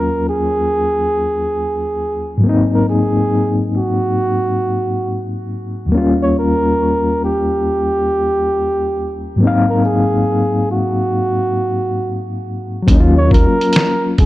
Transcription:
0.00 2.38 D#2 soft
0.00 2.39 F#3 soft
0.00 2.41 A#3 soft
0.00 2.42 C#4 medium
0.00 2.44 F4 medium
0.00 0.24 A#4 medium
0.29 2.41 G#4 medium
2.38 5.85 G#2 medium
2.38 5.86 F#3 soft
2.44 5.88 A#3 medium
2.44 5.89 C4 medium
2.49 5.91 D#4 medium
2.74 2.87 A#4 medium
2.89 3.72 G#4 medium
3.77 5.30 F#4 medium
5.86 9.33 D#2 medium
5.86 5.99 F#3 soft
5.92 9.38 G3 soft
5.92 9.36 A#3 medium
5.92 9.37 C#4 medium
5.97 9.39 F4 medium
6.23 6.35 C#5 medium
6.39 7.20 A#4 medium
7.25 9.37 G4 medium
9.36 12.82 G#2 medium
9.36 12.81 F#3 soft
9.40 12.84 A#3 medium
9.40 12.85 C4 soft
9.45 12.86 D#4 soft
9.45 12.87 F5 medium
9.70 9.83 A#4 medium
9.85 10.73 G#4 medium
10.71 12.25 F#4 medium
12.82 14.26 F#3 medium
12.87 13.47 D#2 loud
12.87 14.26 A#3 medium
12.87 14.26 C#4 medium
12.87 kick loud
12.87 closed hi-hat loud
12.94 12.99 D#4 medium
13.00 14.26 F4 medium
13.18 13.31 C#5 medium
13.31 14.15 A#4 medium
13.31 kick medium
13.31 closed hi-hat medium
13.61 closed hi-hat soft
13.73 snare loud
13.73 closed hi-hat medium
14.18 14.26 C2 medium
14.18 14.26 G#4 medium
14.18 kick medium
14.18 closed hi-hat medium

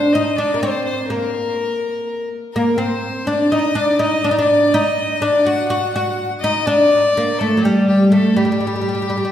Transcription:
0.00 0.15 D4 medium
0.00 0.14 C5 medium
0.13 0.38 D#4 medium
0.13 0.38 D#5 medium
0.37 0.56 D4 medium
0.37 0.61 D5 medium
0.54 0.61 A#3 medium
0.60 1.10 C4 medium
0.60 0.84 C5 medium
0.84 1.08 C5 medium
1.08 2.27 A#3 medium
1.08 2.26 A#4 medium
2.54 2.77 A#3 medium
2.54 2.80 A#4 medium
2.78 3.28 C4 medium
2.78 3.29 C5 medium
3.27 3.52 D4 medium
3.27 3.53 D5 medium
3.52 3.75 D#4 medium
3.52 3.78 D#5 medium
3.75 3.99 D4 medium
3.75 4.00 D5 medium
3.99 4.24 D#4 medium
3.99 4.28 D#5 medium
4.24 4.31 D4 medium
4.24 4.39 D5 medium
4.31 4.38 D#4 medium
4.38 4.74 D4 medium
4.38 4.75 D5 medium
4.73 5.21 D#4 medium
4.73 5.23 D#5 medium
5.22 5.44 D4 medium
5.22 5.47 D5 medium
5.45 5.69 F#4 medium
5.45 5.68 F#5 medium
5.69 5.92 F#4 medium
5.69 5.92 F#5 medium
5.93 6.29 F#4 medium
5.93 6.27 F#5 medium
6.41 6.67 D#4 medium
6.41 6.68 D#5 medium
6.66 7.12 D4 medium
6.66 7.40 D5 medium
7.17 7.40 A#3 medium
7.39 7.58 A3 medium
7.39 7.64 A4 medium
7.57 7.64 F#3 medium
7.63 8.14 G3 medium
7.63 7.87 G4 medium
7.88 8.10 G4 medium
8.12 8.36 A3 medium
8.12 8.38 A4 medium
8.36 8.43 G3 medium
8.36 9.32 G4 medium
8.45 8.51 G3 soft
8.52 8.58 G3 soft
8.60 8.66 G3 soft
8.67 8.73 G3 medium
8.76 8.80 G3 soft
8.81 8.88 G3 soft
8.89 8.93 G3 soft
8.95 9.01 G3 soft
9.02 9.08 G3 soft
9.10 9.16 G3 soft
9.17 9.24 G3 soft
9.25 9.32 G3 soft

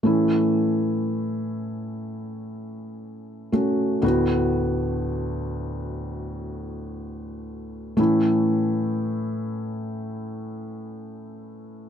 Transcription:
0.03 3.99 A2 soft
0.03 3.99 E3 soft
0.03 3.48 A3 soft
0.03 3.49 C#4 soft
0.03 3.50 E4 soft
3.52 4.03 A3 soft
3.52 4.03 C#4 soft
3.52 4.03 F#4 soft
4.02 7.94 D2 soft
4.02 7.94 A2 soft
4.02 7.94 B3 soft
4.02 7.94 D4 soft
4.02 7.95 F#4 medium
7.97 11.89 A2 medium
7.97 11.89 E3 soft
7.97 11.89 A3 soft
7.97 11.89 C#4 soft
7.97 11.89 E4 medium

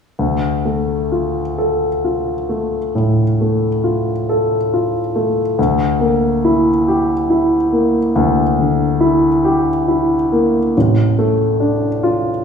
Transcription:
0.19 2.92 D2 soft
0.65 1.40 A3 soft
1.12 1.86 F4 soft
1.58 2.32 A4 soft
2.04 2.77 F4 soft
2.49 3.21 A3 soft
2.95 3.66 A2 soft
3.41 4.12 A3 soft
3.84 4.55 F4 soft
4.29 4.98 A4 soft
4.73 5.41 F4 soft
5.16 5.58 A3 soft
5.59 8.11 D2 soft
6.00 6.69 A#3 soft
6.45 7.12 E4 soft
6.88 7.55 G4 soft
7.30 7.98 E4 soft
7.72 8.41 A#3 soft
8.16 10.71 D2 medium
8.59 9.27 D3 soft
9.00 9.69 E4 soft
9.45 10.13 G4 soft
9.88 10.58 E4 soft
10.32 10.76 A#3 soft
10.77 12.45 A1 soft
11.19 11.86 A3 soft
11.60 12.29 D4 soft
12.03 12.45 F4 medium

